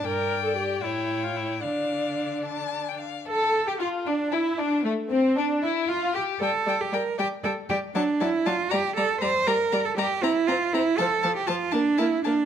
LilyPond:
<<
  \new Staff \with { instrumentName = "Violin" } { \time 6/8 \key d \minor \tempo 4. = 77 g''4. g''4. | f''4. a''8. g''16 f''8 | a'8. g'16 f'8 d'8 e'8 d'8 | a8 c'8 d'8 e'8 f'8 g'8 |
g''8 g''8 g''8 g''8 g''8 g''8 | a''8 a''8 a''8 bes''8 bes''8 bes''8 | bes''8 bes''8 bes''8 bes''8 bes''8 bes''8 | a''8 a''8 a''8 a''8 a''8 a''8 | }
  \new Staff \with { instrumentName = "Violin" } { \time 6/8 \key d \minor d''4. cis''4. | d''2~ d''8 r8 | a'8. g'16 f'8 d'8 e'8 d'8 | a8 c'8 d'8 e'8 f'8 g'8 |
d''8 d''8 d''8 d''8 d''8 d''8 | d''8 d''8 d''8 d''8 d''8 d''8 | d''8 d''8 d''8 c''8 c''8 c''8 | c''8 c''8 c''8 bes'8 bes'8 bes'8 | }
  \new Staff \with { instrumentName = "Cello" } { \time 6/8 \key d \minor g,4. a,4. | d2~ d8 r8 | a'8. g'16 f'8 d'8 e'8 d'8 | a8 c'8 d'8 e'8 f'8 g'8 |
a'8. g'16 bes'8 g'8 a'8 g'8 | d'8 e'8 f'8 g'8 a'8 c''8 | bes'8. a'16 g'8 e'8 f'8 e'8 | a'8. g'16 f'8 d'8 e'8 d'8 | }
  \new Staff \with { instrumentName = "Viola" } { \time 6/8 \key d \minor bes'8. a'16 g'8 e'8. f'16 e'8 | d'2~ d'8 r8 | a'8. g'16 f'8 d'8 e'8 d'8 | a8 c'8 d'8 e'8 f'8 g'8 |
g8 g8 g8 g8 g8 g8 | fis8 fis8 fis8 g8 g8 g8 | g8 g8 g8 c'8 c'8 c'8 | f8 f8 f8 bes8 bes8 bes8 | }
>>